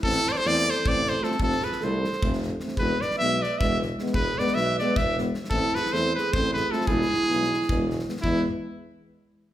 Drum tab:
SD |--ooo-o---o-oo|-oooo-oo-oo-oo|--ooo-o---o-oo|--ooo-o---o-oo|
BD |o-------o-----|o-------o-----|o-------o-----|o-------o-----|

SD |--ooo-o---o-oo|-ooooooo--oooo|--------------|
BD |o-------o-----|o-------o-----|o-------------|